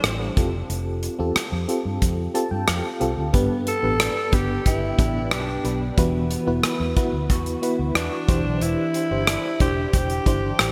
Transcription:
Already playing: G3 D4 E4 G4 A4 C5
0.04 A1, cross-stick, closed hi-hat
0.36 F1 C4 F4 G4 A4, kick, closed hi-hat
0.70 F1, closed hi-hat
1.03 closed hi-hat
1.19 E2 C4 F4 G4 A4
1.36 muted fingered electric bass stroke, cross-stick, closed hi-hat
1.52 F2
1.68 C4 F4 G4 A4, closed hi-hat
1.85 G2
2.02 F2, kick, closed hi-hat
2.34 C4 F4 G4 A4 A5, closed hi-hat
2.51 G2 G5
2.68 F2 F5, cross-stick, closed hi-hat
3.00 C2 C4 F4 G4 A4, closed hi-hat
3.17 D2
3.33 G1 G2 B3 D4 G4 B4, kick, closed hi-hat
3.67 B3 A4, closed hi-hat
3.83 A1 B3 D4 G4 B4
4.00 D4, cross-stick, closed hi-hat
4.32 G1 B3 D4 G4 B4, kick, closed hi-hat
4.66 G1 E4 G4, kick, closed hi-hat
4.98 A1 B3 D4 G4 B4, kick, closed hi-hat
5.31 B1 D4 G4, cross-stick, closed hi-hat
5.64 B1 B3 D4 G4 B4, closed hi-hat
5.97 E1 E3 B3 E4 F#4 B4, kick, closed hi-hat
6.31 B3, closed hi-hat
6.47 E1 B3 E4 F#4 B4
6.63 E4, cross-stick, closed hi-hat
6.80 E2
6.96 B3 E4 F#4 B4, kick, closed hi-hat
7.13 D2
7.30 E2 F#4, kick, closed hi-hat
7.46 closed hi-hat
7.62 B3 E4 F#4 B4, closed hi-hat
7.79 D2
7.95 E2 D4 F#4, cross-stick, closed hi-hat
8.28 E1 E3 D4 E4 G4 C5, kick, closed hi-hat
8.45 B1
8.61 E1 E3 E4, closed hi-hat
8.94 C4, closed hi-hat
9.11 G1 D4 E4 G4 C5
9.27 D4, cross-stick, closed hi-hat
9.60 E1 C4 D4 E4 G4 C5, kick, closed hi-hat
9.93 E1 G4, kick, closed hi-hat
10.10 closed hi-hat
10.26 G1 D4 E4 G4 C5, kick, closed hi-hat
10.59 A1 G4, cross-stick, closed hi-hat

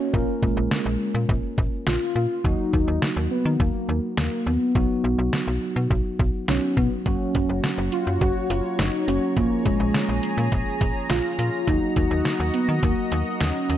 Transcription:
Already playing: A#3 C#4 F#4 C#5
0.14 A#1 A#3 C#4 F4 A#4, kick
0.43 A#1 G#3, kick
0.57 A#1
0.71 snare
0.86 A#1
1.15 A#2
1.29 A#1, kick
1.58 A#1, kick
1.87 A#1 F4, snare
2.15 A#2 F4
2.44 D#2 F#3 A#3 D#4 F#4, kick
2.73 D#2, kick
2.88 D#2
3.02 snare
3.17 D#2
3.31 B3
3.45 D#3
3.60 D#2 A#3, kick
3.89 D#2
4.17 D#2 A#3, snare
4.46 D#2 B3
4.75 B1 F#3 B3 D#4 F#4, kick
5.04 B1
5.18 B1
5.33 snare
5.47 B1
5.76 B2
5.91 B1, kick
6.19 B1, kick
6.48 B1 F#3 B3 C#4 D#4 F#4, snare
6.77 B2 B3, kick
7.06 F#1 F#3 A#3 C#4 F#4 C#5 A#5, kick, closed hi-hat
7.35 F#1, kick, closed hi-hat
7.49 F#1
7.64 snare, closed hi-hat
7.78 F#1
7.92 F4, closed hi-hat
8.07 F#2
8.21 F#1 F#4, kick, closed hi-hat
8.50 F#1 F4, closed hi-hat
8.79 F#1 D#4, snare, closed hi-hat
9.08 F#1 F#3 A#3 C#4 F#4, closed hi-hat
9.37 A#1 F3 A#3 C#4 F4 G#4, kick, closed hi-hat
9.65 A#1 G#3, kick, closed hi-hat
9.80 A#1
9.94 snare, closed hi-hat
10.09 A#1
10.23 closed hi-hat
10.38 A#2
10.52 A#1, kick, closed hi-hat
10.81 A#1, kick, closed hi-hat
11.10 A#1 F4, snare, closed hi-hat
11.39 A#2 F4, closed hi-hat
11.67 D#2 F#3 A#3 D#4 F#4 D#5, kick, closed hi-hat
11.96 D#2, kick, closed hi-hat
12.11 D#2
12.25 snare, closed hi-hat
12.40 D#2
12.54 B3, closed hi-hat
12.69 D#3
12.83 D#2 A#3, kick, closed hi-hat
13.12 D#2, closed hi-hat
13.41 D#2 C#4, snare, closed hi-hat
13.70 D#2, closed hi-hat

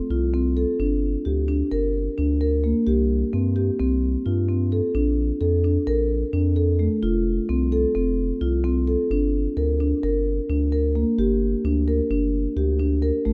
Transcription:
0.10 C2 F4
0.34 C4
0.57 A4
0.80 G1 D4
1.25 D2 G4
1.48 D4
1.72 G1 A#4
2.18 D2 D4
2.41 A#4
2.64 A#3
2.87 C2 G4
3.33 G2 C4
3.56 G4
3.80 C2 C4
4.26 G2 F4
4.49 C4
4.72 A4
4.95 A#1 D4
5.41 F2 A4
5.64 D4
5.87 A#1 A#4
6.33 F2 D4
6.56 A4
6.79 A3
7.03 F1 F4
7.49 C2 C4
7.72 A4
7.95 F1 C4
8.41 C2 F4
8.64 C4
8.87 A4
9.10 G1 D4
9.57 D2 A#4
9.80 D4
10.03 G1 A#4
10.49 D2 D4
10.72 A#4
10.95 A#3
11.18 G1 G4
11.64 D2 D4
11.88 A#4
12.10 G1 D4
12.56 D2 G4
12.79 D4
13.02 A#4
13.25 A1 A3

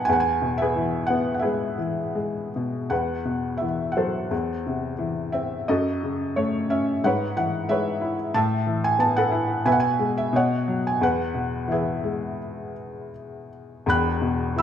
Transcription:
Already playing: B2 F#3 D#4 B4 D#5 F#5 G#5 A5
0.05 E2 B4 G#5
0.13 F#5
0.20 G#5
0.42 B2
0.58 E5
0.62 G#4 B4
0.76 E3
1.07 B3 F#5
1.34 F#5
1.39 G#4 B4 E5
1.45 G#3
1.78 E3
2.15 G#3
2.56 B2
2.90 E2 B4 F#5
3.25 B2
3.57 E5
3.62 E3
3.92 F#3 F#5
3.97 A4 C5
4.31 E2
4.66 C3
4.98 E3
5.32 C4 E5
5.68 F#2 F#4 A4 D#5
6.03 C#3
6.36 A3 C#5
6.70 C#4 E5
7.04 G#2 B4 C#5 F#5
7.37 E3 F#5
7.69 G#3 B4 C#5 E5
8.01 E4
8.34 A2 E5 A5
8.67 E3
8.84 G#5
8.99 B3 A5
9.17 A4 B4 F#5
9.32 E4
9.65 B2 B4 E5 G#5
9.72 F#5
9.80 G#5
9.99 G#3
10.18 E5
10.33 B2 C#5 D#5 F#5
10.68 F#3
10.87 G#5
11.01 E2 B4 F#5
11.34 B2
11.68 E3 G#4 B4 E5
12.04 G#3
13.86 E1 E2 B5 F#6
14.21 B2
14.56 E3 E6

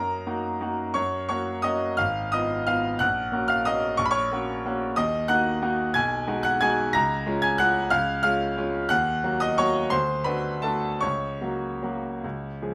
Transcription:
Already playing: F#2 A#4 A#5
0.26 A#3 D#4 F#4
0.61 A#3 D#4 F#4
0.94 F#2 C#5 C#6
1.29 A#3 C#4 F#4 C#5 C#6
1.62 A#3 C#4 F#4 D#5 D#6
1.97 G#1 F5 F6
2.32 B3 F4 D#5 D#6
2.67 B3 F4 F5 F6
2.99 A#1 F#5 F#6
3.32 A#3 C#4 F#4
3.48 F5 F6
3.65 A#3 C#4 F#4 D#5 D#6
3.97 A#1 C#6
4.05 B5
4.11 C#5 C#6
4.31 A#3 C#4 F#4
4.65 A#3 C#4 F#4
4.96 D#2 D#5 D#6
5.28 A#3 D#4 F#4 F#5 F#6
5.62 A#3 D#4 F#4
5.94 B1 G#5 G#6
6.28 G#3 D#4 F#4
6.43 F#5 F#6
6.61 G#3 D#4 F#4 G#5 G#6
6.93 C#2 A#5 A#6
7.26 G#3 C#4 F4
7.42 G#5 G#6
7.58 G#3 C#4 F4 F#5 F#6
7.90 C#2 F5 F6
8.23 G#3 C#4 F4 F5 F6
8.57 G#3 C#4 F4
8.89 D#2 F#5 F#6
9.24 F#3 A#3 F#4
9.40 D#5 D#6
9.58 F#3 A#3 F#4 C#5 C#6
9.90 D2 C5 C6
10.24 A3 D4 F#4 B4 B5
10.62 A3 D4 F#4 A4 A5
11.01 C#2 C#5 C#6
11.41 F#3 A#3 F#4
11.82 F#3 A#3 F#4
12.24 C#2
12.62 F3 G#3 G#4

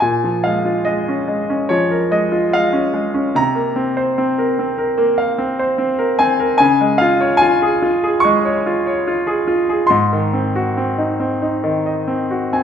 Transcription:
0.00 A#2 G#5
0.24 F3
0.44 G#3 F5
0.65 F4
0.85 G#3 D#5
1.08 C#4
1.28 G#3
1.50 C#4
1.69 F3 C#5
1.91 A#4
2.11 G#3 D#5
2.32 F4
2.53 G#3 F5
2.73 C#4
2.94 G#3
3.14 C#4
3.35 C3 A#5
3.55 A#3
3.76 C4
3.97 C5
4.18 C4
4.38 A#4
4.59 C4
4.78 A#4
4.98 A#3
5.18 F5
5.38 C4
5.59 C5
5.78 C4
5.99 A#4
6.19 C4 G#5
6.40 A#4
6.58 C#3 G#5
6.81 G#3
6.98 F4 F5
7.21 C#5
7.37 G#5
7.42 F4
7.62 G#4
7.82 F4
8.04 G#4
8.20 C#6
8.25 G#3
8.45 C#5
8.66 F4
8.87 C#5
9.07 F4
9.27 G#4
9.48 F4
9.69 G#4
9.87 G#2 C6
10.13 D#3
10.33 C4
10.56 F#4
10.77 C4
10.98 D#4
11.20 C4
11.42 D#4
11.64 D#3
11.86 D#5
12.08 C4
12.31 F#4
12.53 C4 G#5

